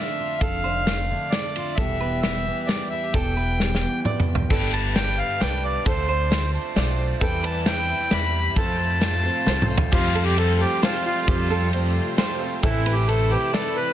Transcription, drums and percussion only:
0.41 kick medium
0.41 ride medium
0.87 snare medium
0.87 ride medium
1.32 snare medium
1.32 ride medium
1.56 ride medium
1.78 kick loud
1.78 ride medium
2.23 snare medium
2.23 ride soft
2.69 snare medium
2.69 ride soft
3.14 kick medium
3.14 ride medium
3.60 snare soft
3.75 snare soft
4.05 mid tom medium
4.20 mid tom medium
4.35 floor tom medium
4.50 kick loud
4.50 crash medium
4.50 shaker medium
4.73 ride medium
4.73 shaker soft
4.96 snare medium
4.96 ride medium
4.96 shaker soft
5.18 shaker medium
5.41 snare medium
5.41 ride soft
5.85 kick loud
5.85 ride medium
5.85 shaker medium
6.08 shaker soft
6.31 snare medium
6.31 ride medium
6.31 shaker soft
6.54 shaker medium
6.76 snare medium
6.76 ride medium
7.20 kick loud
7.20 ride medium
7.20 shaker medium
7.44 ride medium
7.44 shaker soft
7.66 snare medium
7.66 ride medium
7.66 shaker soft
7.89 shaker medium
8.11 snare medium
8.11 ride medium
8.56 kick loud
8.56 ride medium
8.56 shaker medium
8.80 shaker soft
9.01 snare medium
9.01 ride medium
9.01 shaker soft
9.36 shaker soft
9.47 snare medium
9.47 shaker soft
9.62 mid tom medium
9.78 floor tom loud
9.93 kick loud
9.93 crash loud
9.93 shaker medium
10.15 ride medium
10.38 ride medium
10.60 shaker loud
10.83 snare medium
10.83 ride medium
11.28 kick loud
11.28 ride medium
11.28 shaker medium
11.73 ride medium
11.95 shaker medium
12.18 snare medium
12.18 ride medium
12.63 kick loud
12.63 ride medium
12.63 shaker medium
12.86 ride medium
13.09 ride medium
13.31 shaker medium
13.54 snare medium
13.54 ride medium

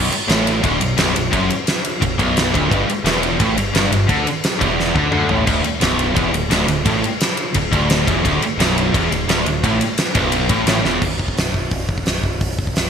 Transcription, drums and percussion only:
0.12 ride medium
0.29 snare loud
0.29 ride loud
0.47 ride medium
0.64 kick loud
0.64 ride loud
0.81 ride medium
0.98 snare loud
0.98 ride loud
1.16 ride medium
1.33 kick loud
1.33 ride loud
1.50 ride medium
1.67 snare loud
1.67 ride loud
1.85 ride medium
2.02 kick medium
2.02 ride loud
2.19 kick loud
2.19 ride medium
2.37 snare loud
2.37 ride loud
2.54 kick loud
2.54 ride medium
2.71 kick loud
2.71 ride medium
2.90 ride medium
3.06 snare loud
3.06 ride loud
3.23 ride medium
3.40 kick loud
3.40 ride loud
3.58 ride medium
3.75 snare loud
3.75 ride loud
3.92 ride medium
4.09 kick loud
4.09 ride loud
4.27 ride medium
4.44 snare loud
4.44 ride loud
4.61 kick loud
4.61 ride medium
4.80 snare medium
4.96 kick loud
5.12 mid tom medium
5.29 floor tom medium
5.47 kick loud
5.47 crash loud
5.64 ride medium
5.81 snare loud
5.81 ride loud
5.99 ride medium
6.16 kick loud
6.16 ride medium
6.34 ride medium
6.51 snare loud
6.51 ride loud
6.68 ride medium
6.86 kick loud
6.86 ride loud
7.04 ride medium
7.20 snare loud
7.20 ride loud
7.37 ride medium
7.54 kick medium
7.54 ride loud
7.73 kick loud
7.73 ride medium
7.90 snare loud
7.90 ride loud
8.07 kick loud
8.07 ride medium
8.25 kick loud
8.25 ride medium
8.42 ride medium
8.60 snare loud
8.60 ride loud
8.78 ride medium
8.94 kick loud
8.94 ride loud
9.12 ride medium
9.29 snare loud
9.29 ride loud
9.46 ride medium
9.64 kick loud
9.64 ride loud
9.81 ride medium
9.98 snare loud
9.98 ride loud
10.15 kick loud
10.15 ride medium
10.32 ride loud
10.49 kick loud
10.49 ride medium
10.67 snare loud
10.67 ride loud
10.85 snare medium
11.02 kick loud
11.02 crash medium
11.19 kick medium
11.28 kick medium
11.37 snare loud
11.37 open hi-hat medium
11.54 kick medium
11.71 kick loud
11.71 open hi-hat medium
11.89 kick medium
11.98 kick medium
12.06 snare loud
12.06 open hi-hat medium
12.24 kick medium
12.41 kick loud
12.41 open hi-hat medium
12.59 kick medium
12.67 kick medium
12.76 snare loud
12.76 open hi-hat medium

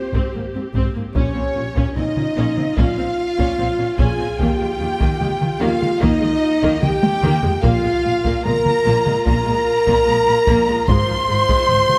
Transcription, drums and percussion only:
0.13 taiko medium
0.74 taiko medium
1.15 taiko loud
1.76 taiko medium
1.97 taiko mid medium
2.17 taiko mid medium
2.57 taiko mid medium
2.77 taiko medium
3.38 taiko medium
3.99 taiko medium
4.39 taiko loud
5.01 taiko medium
5.21 taiko mid medium
5.41 taiko mid medium
5.82 taiko mid soft
6.02 taiko loud
6.63 taiko medium
6.83 taiko mid medium
7.03 taiko high loud
7.23 taiko mid loud
7.44 taiko low loud
7.64 taiko loud
8.25 taiko medium
8.46 taiko mid medium
8.66 taiko mid medium
9.06 taiko mid medium
9.26 taiko medium
9.87 taiko medium
10.47 taiko medium
10.88 taiko loud
11.49 taiko medium
11.69 taiko mid medium
11.89 taiko mid medium

